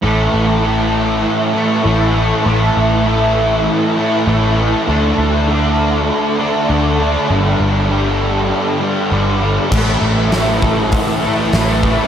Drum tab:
CC |--------|--------|--------|--------|
HH |--------|--------|--------|--------|
SD |--------|--------|--------|--------|
BD |--------|--------|--------|--------|

CC |x-------|
HH |--o-o-o-|
SD |--o---o-|
BD |o--oo--o|